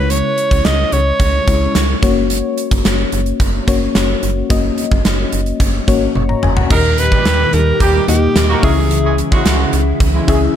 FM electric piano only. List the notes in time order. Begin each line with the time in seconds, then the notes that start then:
Already playing: C#3 G#3 C#4 E4 C#5
1.47 G#3 C#4 E4 C#5
2.02 A#3 C#4 F#4 C#5
3.67 A#3 C#4 F#4 C#5
4.50 A#3 C#4 F#4 D#5
5.87 A#3 C#4 F#4 C#5
6.16 C#6
6.29 A#5
6.43 G#5
6.57 F#5
6.70 A#2 D#3 D#4 G4 D#5
8.08 A#3 D#4 G4 D#5
8.63 C#3 C#4 E4 G#4 E5
10.28 C#4 E4 G#4 E5